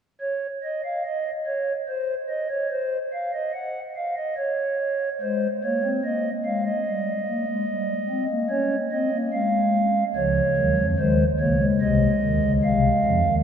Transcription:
pipe organ
0.21 C#5
0.63 D#5
0.84 F5
1.04 D#5
1.46 C#5
1.88 C5
2.29 D#5
2.50 C#5
2.71 C5
3.13 F5
3.34 D#5
3.54 F#5
3.96 F5
4.17 D#5
4.37 C#5
5.21 G#3 C5
5.64 A#3 C#5
5.83 C4
6.05 A#3 D#5
6.45 G#3 F5
6.65 D#5
6.87 G3
7.28 A#3
7.48 G#3
7.68 G3
8.09 C4
8.30 A#3
8.50 C#4 C#5
8.91 C4 D#5
9.12 A#3
9.33 G#3 F5
10.15 C#2 C#3 F3 C#5
10.56 D#2 D#3 F#3
10.77 F2 F3
10.98 D#2 D#3 G#3 C5
11.39 C#2 C#3 A#3 C#5
11.60 G#3
11.81 C2 C3 D#5
12.22 D#2 D#3
12.42 C#2 C#3
12.63 C2 C3 F5
13.04 F2 F3
13.25 D#2 D#3

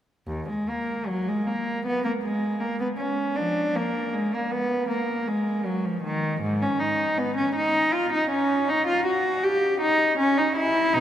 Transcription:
cello
0.27 D#2
0.49 G#3
0.69 A#3
1.08 F#3
1.28 G#3
1.47 A#3
1.86 B3
2.05 A#3
2.23 G#3
2.60 A#3
2.80 B3
2.98 C#4
3.36 F3 D4
3.76 A#3
4.14 G#3
4.34 A#3
4.51 B3
4.89 A#3
5.28 G#3
5.65 F#3
5.85 F3
6.03 D#3
6.41 G#2
6.62 C#4
6.79 D#4
7.18 B3
7.37 C#4
7.55 D#4
7.93 F4
8.13 D#4
8.30 C#4
8.68 D#4
8.87 F4
9.06 F#4
9.43 G4
9.81 D#4
10.18 C#4
10.38 D#4
10.56 E4
10.93 B2 D#4

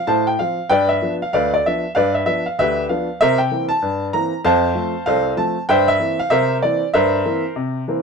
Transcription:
upright piano
0.07 A2 C5 F5 A5
0.27 G5
0.39 F3 C4 F4 F5
0.70 G2 B4 D5 G5
0.89 E5
1.02 F3 B3 D4
1.22 F5
1.33 D2 B4 D5 F5
1.54 D5
1.66 F3 B3 D4 E5
1.95 G2 B4 D5 F5
2.14 E5
2.26 F3 B3 D4 E5
2.46 F5
2.59 D2 G4 B4 E5
2.89 F3 B3 D4 F5
3.21 C3 A#4 C5 E5
3.38 G5
3.51 E3 A#3 C4
3.69 A5
3.82 G2
4.13 E3 A#3 C4 A#5
4.44 F2 C5 F5 A5
4.75 F3 A3 C4
5.06 C2 A4 C5 F5
5.37 F3 A3 C4 A5
5.69 G2 C5 E5 G5
5.88 E5
6.00 E3 A#3
6.19 F5
6.30 C3 A#4 C5 E5
6.62 E3 A#3 C4 D5
6.94 G2 A#4 C5 E5
7.26 E3 A#3 C4
7.56 C3
7.88 E3 A#3 C4

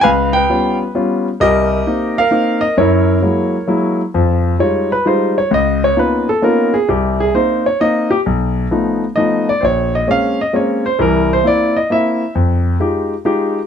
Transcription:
grand piano
0.01 C#2 B4 F5 G#5
0.33 B4 G5
0.49 G3 B3 C#4 F4
0.95 G3 B3 C#4 F4
1.40 C2 G4 A#4 D#5
1.87 A#3 C4 D#4
2.18 A#4 F5
2.31 A#3 C4 D#4
2.61 D#5
2.77 F#2 E4 A#4 C#5
3.22 F#3 G#3 A#3 E4
3.68 F#3 G#3 A#3 E4
4.14 F2 F3
4.59 G3 G#3 D#4 F4 C#5
4.92 B4
5.05 G3 G#3 D#4 F4 C5
5.38 C#5
5.51 C#2 D#5
5.84 C#5
5.97 A#3 B3 C#4 D#4 F4 B4
6.29 A4
6.42 A#3 B3 C#4 D#4 F4 A#4
6.74 G#4
6.89 C2 G4
7.20 G#4
7.34 A#3 C4 D#4 C5
7.66 C#5
7.80 A#3 C4 D#4 D#5
8.11 G4
8.26 B1
8.71 F3 A3 B3 D#4
9.16 F3 A3 B3 D#4 D#5
9.49 D5
9.61 A#1 C5
9.65 C#5
9.95 D#5
10.07 G#3 A#3 C4 C#4 F5
10.41 D#5
10.53 G#3 A#3 C4 C#4 C#5
10.86 C5
10.99 C2 E3 A#4
11.33 C5
11.44 A#3 C4 E4 D5
11.77 D#5
11.90 A#3 C4 E4 E5
12.35 F2
12.80 G#3 D#4 F4 G4
13.25 G#3 D#4 F4 G4

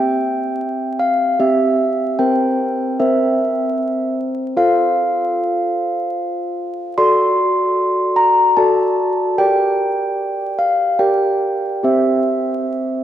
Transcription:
handbells
Already playing: C4 G4 E5 G5
0.99 F5
1.40 C4 G4 E5
2.19 C4 A#4 C5 G5
3.00 C4 A#4 C5 E5
4.57 F4 A4 C5 F5
6.98 F#4 A4 D5 C6
8.16 A#5
8.57 F#4 A4 D5 A5
9.38 G4 A#4 D5 G5
10.59 F5
10.99 G4 A#4 D5 G5
11.83 C4 G4 C5 E5

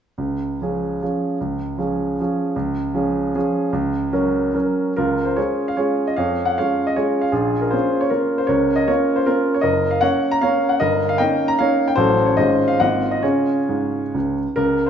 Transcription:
grand piano
0.18 C#2
0.62 F3 C#4 G#4
1.02 F3 C#4 G#4
1.41 C#2
1.78 F3 C#4 G#4
2.20 F3 C#4 G#4
2.56 C#2
2.94 F3 C#4 G#4
3.35 F3 C#4 G#4
3.73 C#2
4.13 F#3 C#4 A#4
4.54 F#3 C#4 A#4
4.97 C#2 F4 A#4
5.25 C5
5.36 G#3 C#4 F4 G#4 C#5
5.68 F5
5.77 G#3 C#4 F4 G#4 C#5
6.07 D#5
6.16 F2 C#5 F5
6.45 F#5
6.58 G#3 C#4 F4 C#5 F5
6.87 D#5
6.96 G#3 C#4 F4 G#4 C#5
7.21 F5
7.32 A#1 F4 G#4
7.61 A#4
7.71 A#3 C#4 F4 G#4 C5
8.01 C#5
8.10 A#3 C#4 F4 A#4
8.38 C5
8.47 C#2 A#4 C#5
8.76 D#5
8.88 A#3 C#4 F4 A#4 C#5
9.16 C5
9.26 A#3 C#4 F4 A#4
9.54 C#5
9.61 F#1 A#4 D#5
9.91 F5
10.01 A#3 C#4 C#5 F#5
10.31 A#5
10.41 A#3 C#4 C#5 F5
10.69 F#5
10.80 G1 A#4 D#5
11.09 F5
11.18 A#3 C#4 D#4 D#5 G5
11.48 A#5
11.59 A#3 C#4 D#4 C#5 F5
11.88 G5
11.96 A1 F#3 C#4 F#4 A4 C5
12.26 C#5
12.37 G#1 G#3 C#4 F4 C5 D#5
12.68 F5
12.80 G#1 A#3 C4 F4 D#5 F#5
13.11 D#5
13.23 C#3 C#4 F4 G#4 C#5
13.69 G#2
14.14 C#2
14.56 C#2 A#4
14.86 C5

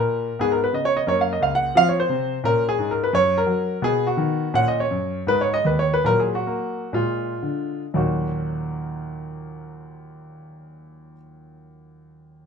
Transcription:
grand piano
Already playing: A#2 A#3 A#4
0.39 G#2 B3 G#4
0.52 A#4
0.64 B4
0.73 C#3 D#5
0.85 C#5
0.97 D#5
1.07 F#2 A#3 C#5
1.21 F5
1.33 D#5
1.41 C#2 F5
1.55 F#5
1.75 F3 C4 F5
1.89 C#5
2.00 C5
2.09 C3
2.44 A#2 C#4 A#4
2.69 G#4
2.79 G#2
2.91 A#4
3.04 B4
3.13 F#2 C#4 C#5
3.38 A#4
3.46 F#3
3.82 B2 B3 G#4
4.07 F#4
4.17 D#3
4.54 A#2 C#4 F#5
4.68 D#5
4.80 C#5
4.91 F#2
5.27 G#2 G#3 B4
5.41 C#5
5.54 D#5
5.65 D#2 B4
5.79 C#5
5.94 B4
6.04 A#2 F#3 A#4
6.20 G#4
6.35 F#4
6.47 A#3
6.93 A#2 G#3 F4
7.43 D3
7.94 D#2 A#2 F#3 A#3 D#4 F#4

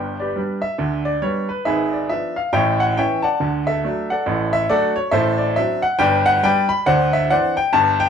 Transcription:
upright piano
Already playing: G1 G2 B4 D5 G5
0.20 G4 B4 D5
0.36 G3 B3 D4
0.62 E5
0.78 D2 D3
1.05 D5
1.22 G3 B3 D4 C#5
1.49 B4
1.65 G#1 G#2 G#4 B4 E5
1.93 D5
2.09 F3 B3 D4 E5
2.36 F5
2.53 A1 A2 C#5 E5 G5
2.80 F#5
2.97 E3 B3 C#4 C#5 E5 G5
3.22 D5 F#5 A5
3.40 D2 D3
3.67 A4 E5
3.84 F#3 A3 D4
4.10 A4 D5 F#5
4.26 A1 A2
4.53 E5
4.69 F#3 A3 D4 F#4 A4 D5
4.96 C#5
5.11 A1 A2 A4 C5 E5
5.38 D5
5.56 F#3 C4 D4 E5
5.82 F#5
5.99 G1 G2 B4 D5 G5
6.26 F#5
6.43 G3 B3 D4 B4 D5 G5
6.69 B5
6.86 D2 D3 C5 D5 F#5
7.13 E5
7.30 E3 C4 D4 C5 D5 F#5
7.57 G5
7.73 G1 G2 A5
8.00 G5

